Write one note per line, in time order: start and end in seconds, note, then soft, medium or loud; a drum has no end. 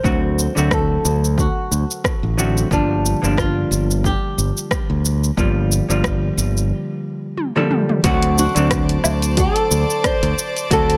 0.00 0.51 D3 medium
0.00 0.52 F#3 medium
0.00 0.73 C5 medium
0.04 0.46 D2 loud
0.04 0.52 A3 medium
0.04 0.52 C4 medium
0.04 0.52 F#4 medium
0.04 kick loud
0.04 shaker soft
0.39 shaker medium
0.55 0.97 D2 medium
0.55 2.34 D3 medium
0.55 2.34 F#3 medium
0.55 2.34 A3 medium
0.55 2.35 C4 medium
0.55 2.35 F#4 medium
0.55 shaker soft
0.71 1.39 A4 medium
0.71 kick medium
0.71 cross-stick medium
0.71 shaker soft
1.05 1.46 D2 medium
1.05 shaker medium
1.24 shaker soft
1.38 2.35 F#4 medium
1.38 kick medium
1.38 shaker soft
1.71 1.83 D2 medium
1.71 shaker medium
1.91 shaker soft
2.04 kick medium
2.04 cross-stick medium
2.04 shaker soft
2.23 2.63 A1 medium
2.37 2.67 D3 medium
2.37 2.67 F#3 medium
2.37 2.68 A3 medium
2.37 2.68 C4 medium
2.37 2.68 F#4 medium
2.37 shaker medium
2.57 shaker soft
2.71 3.13 G1 medium
2.71 3.19 D3 medium
2.71 3.19 F3 medium
2.71 3.19 G3 medium
2.71 3.19 A#3 medium
2.71 3.41 D4 loud
2.71 3.19 F4 medium
2.71 kick medium
2.71 shaker soft
3.06 shaker medium
3.22 3.63 G1 medium
3.22 5.34 D3 medium
3.22 5.34 F3 medium
3.22 5.34 G3 medium
3.22 5.35 A#3 medium
3.22 5.35 D4 medium
3.22 shaker soft
3.38 4.06 F4 medium
3.38 kick loud
3.38 cross-stick medium
3.38 shaker soft
3.71 4.13 G1 loud
3.71 shaker medium
3.91 shaker soft
4.04 6.68 G4 medium
4.04 kick medium
4.04 shaker soft
4.38 4.50 G1 medium
4.38 shaker medium
4.57 shaker soft
4.71 kick medium
4.71 cross-stick medium
4.71 shaker soft
4.90 5.30 D2 medium
5.05 shaker medium
5.24 shaker soft
5.37 5.79 G1 medium
5.37 5.85 D3 medium
5.37 5.85 F3 medium
5.37 5.85 G3 medium
5.37 5.86 A#3 medium
5.37 5.86 F4 medium
5.37 kick loud
5.37 shaker soft
5.72 shaker medium
5.89 6.29 G1 medium
5.89 7.52 D3 medium
5.89 7.53 F3 medium
5.89 7.53 G3 medium
5.89 7.53 A#3 medium
5.89 7.54 F4 medium
5.89 shaker soft
6.04 kick loud
6.04 cross-stick loud
6.04 shaker soft
6.37 6.71 G1 medium
6.37 shaker medium
6.57 shaker soft
7.38 high tom medium
7.56 8.01 D3 medium
7.56 8.01 F3 medium
7.56 8.01 G3 medium
7.56 8.01 A#3 medium
7.56 8.01 A4 loud
7.56 high tom medium
7.71 mid tom medium
7.89 mid tom medium
8.04 8.46 D2 loud
8.04 8.51 D3 medium
8.04 8.52 F#3 medium
8.04 8.52 A3 medium
8.04 8.52 C4 medium
8.04 8.34 F#4 medium
8.04 8.52 F#4 loud
8.04 8.38 F#4 loud
8.04 10.97 C5 medium
8.04 10.97 D5 medium
8.04 10.97 A5 medium
8.04 10.97 D6 medium
8.04 kick loud
8.04 closed hi-hat medium
8.04 shaker soft
8.22 closed hi-hat soft
8.38 9.39 F#4 medium
8.38 shaker medium
8.55 8.96 D2 medium
8.55 10.67 D3 medium
8.55 10.67 F#3 medium
8.55 10.68 A3 medium
8.55 10.68 C4 medium
8.55 10.69 D4 loud
8.55 closed hi-hat soft
8.55 shaker soft
8.70 9.01 C5 medium
8.70 kick loud
8.70 cross-stick medium
8.70 closed hi-hat medium
8.70 shaker soft
8.89 closed hi-hat soft
9.04 9.46 D2 loud
9.04 low woodblock medium
9.04 shaker medium
9.22 closed hi-hat soft
9.22 shaker soft
9.37 9.68 F#4 medium
9.37 10.06 A4 loud
9.37 kick medium
9.37 closed hi-hat medium
9.37 shaker soft
9.56 closed hi-hat soft
9.71 9.83 D2 medium
9.71 shaker medium
9.90 shaker soft
10.04 10.73 C5 loud
10.04 10.35 D5 loud
10.04 kick loud
10.04 cross-stick loud
10.04 closed hi-hat medium
10.04 shaker soft
10.23 10.32 D2 loud
10.23 closed hi-hat soft
10.39 shaker medium
10.57 closed hi-hat soft
10.57 shaker soft
10.70 10.97 D2 loud
10.70 10.97 D3 medium
10.70 10.97 F#3 medium
10.70 10.97 A3 medium
10.70 10.97 C4 medium
10.70 10.97 F#4 loud
10.70 10.97 F#4 medium
10.70 10.97 A4 loud
10.70 kick loud
10.70 closed hi-hat medium
10.70 shaker soft
10.90 closed hi-hat soft